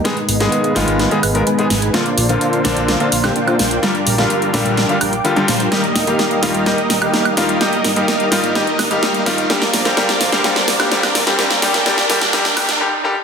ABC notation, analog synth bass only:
X:1
M:4/4
L:1/16
Q:1/4=127
K:Bbmix
V:1 name="Analog synth bass" clef=bass
z2 A,,,2 z2 A,,, A,,,2 z A,,,2 z2 A,,,2 | z2 B,,,2 z2 B,,, B,,,2 z B,,,2 z2 B,,,2 | z2 B,,,2 z2 B,,, B,,,2 z B,,,2 z2 B,,,2 | z2 E,,,2 z2 E,,, E,,,2 z E,,,2 z2 E,,,2 |
z2 A,,,2 z2 A,,, A,,,2 z A,,,2 z2 A,,,2 | z2 B,,,2 z2 B,,, B,,,2 z B,,,2 z2 B,,,2 | z2 B,,,2 z2 B,,, B,,,2 z B,,,2 z4 |]